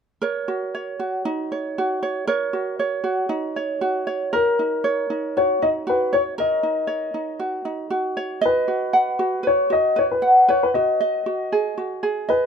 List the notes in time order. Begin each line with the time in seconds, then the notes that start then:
0.22 A#4 C#5
0.48 F#4
0.75 C#5
0.99 F#4
1.25 D#4
1.52 C#5
1.78 F#4
2.03 C#5
2.27 A#4 C#5
2.53 F#4
2.79 C#5
3.04 F#4
3.29 D#4
3.56 C#5
3.81 F#4
4.07 C#5
4.33 A#4
4.59 D#4
4.84 C#5
5.10 D#4
5.37 F#4 C#5
5.62 D#4 D#5
5.87 F#4 B4
6.13 C#5
6.38 A#4 D#5
6.63 D#4
6.87 C#5
7.14 D#4
7.40 F#4
7.65 D#4
7.90 F#4
8.17 C#5
8.41 D#5
8.45 B4
8.68 F#4
8.93 F#5
9.19 F#4
9.43 B4
9.47 C#5
9.70 F#4 D#5
9.96 B4 C#5
10.11 B4
10.22 F#5
10.48 B4 C#5
10.63 B4
10.74 F#4 D#5
11.01 D#5
11.26 F#4
11.52 G#4
11.78 F#4
12.03 G#4
12.29 B4 D#5